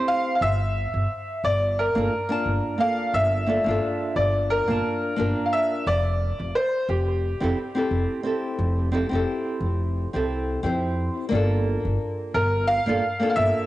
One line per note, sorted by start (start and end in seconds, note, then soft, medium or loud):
0.00 0.39 C4 medium
0.00 0.39 E4 medium
0.00 0.40 G4 medium
0.00 0.16 A4 medium
0.00 0.40 C5 loud
0.08 0.34 F5 loud
0.35 0.41 F5 medium
0.41 0.84 G1 medium
0.41 1.40 E5 loud
0.94 1.04 G1 medium
1.44 1.86 G1 medium
1.44 1.79 D5 medium
1.79 2.84 A#4 medium
1.95 2.06 G1 medium
1.95 2.11 A#3 medium
1.95 2.12 D4 medium
1.95 2.12 F4 medium
1.95 2.13 A4 medium
2.29 2.75 A#3 medium
2.29 2.76 D4 medium
2.29 2.76 F4 medium
2.29 2.77 A5 medium
2.46 2.58 G1 medium
2.78 3.43 A#3 medium
2.78 3.44 D4 medium
2.78 3.44 F4 medium
2.78 3.45 A4 medium
2.78 3.15 F5 loud
3.13 3.56 G1 medium
3.13 4.19 E5 loud
3.46 3.62 A#3 medium
3.46 3.62 D4 medium
3.46 3.63 F4 medium
3.46 3.63 A4 medium
3.64 3.77 G1 medium
3.64 4.63 A#3 medium
3.64 4.64 D4 medium
3.68 4.65 F4 medium
3.68 4.66 A4 loud
4.16 4.59 G1 medium
4.16 4.51 D5 medium
4.50 5.49 A#4 loud
4.68 4.79 G1 medium
4.68 5.14 A#3 medium
4.68 5.14 D4 medium
4.68 5.15 F4 medium
4.68 5.15 A5 medium
5.16 5.31 G1 medium
5.16 5.84 A#3 medium
5.16 5.84 D4 medium
5.16 5.85 F4 medium
5.16 5.85 A#4 loud
5.46 5.52 F5 medium
5.53 5.88 E5 medium
5.87 6.29 F1 medium
5.87 6.57 D5 loud
6.40 6.50 F1 medium
6.55 6.87 C5 medium
6.89 7.31 F1 medium
6.89 10.60 G4 medium
7.40 7.52 F1 medium
7.40 7.57 C4 medium
7.40 7.57 E4 medium
7.40 7.58 G4 medium
7.40 7.58 A4 medium
7.75 8.21 C4 medium
7.75 8.22 E4 medium
7.75 8.22 G4 medium
7.75 8.23 A4 medium
7.91 8.03 F1 medium
8.23 8.89 C4 medium
8.23 8.89 E4 medium
8.23 8.90 G4 medium
8.23 8.90 A4 medium
8.59 9.02 F1 medium
8.92 9.07 C4 medium
8.92 9.08 E4 medium
8.92 9.08 G4 medium
8.92 9.08 A4 medium
9.09 9.22 F1 medium
9.09 10.09 C4 medium
9.09 10.10 E4 medium
9.09 10.10 G4 medium
9.15 10.12 A4 loud
9.60 10.04 F1 medium
10.13 10.55 C2 medium
10.13 10.60 C4 medium
10.13 10.60 E4 medium
10.13 10.60 G4 medium
10.13 10.61 A4 medium
10.63 11.06 F2 medium
10.63 11.28 C4 medium
10.63 11.30 E4 medium
10.63 11.31 G4 medium
10.63 11.31 C5 medium
11.29 11.75 G1 loud
11.29 12.33 A#3 loud
11.29 12.34 D4 medium
11.33 12.35 F4 medium
11.33 12.36 A4 loud
11.85 11.95 G1 medium
12.34 12.77 G1 medium
12.34 12.70 A#4 medium
12.68 13.26 F5 loud
12.86 12.97 G1 medium
12.86 13.02 A#3 medium
12.86 13.03 D4 medium
12.86 13.03 F4 medium
12.86 13.04 A4 loud
13.20 13.66 A#3 medium
13.20 13.66 D4 medium
13.20 13.66 F4 medium
13.20 13.66 A4 medium
13.30 13.36 F5 medium
13.36 13.49 G1 medium
13.36 13.66 E5 loud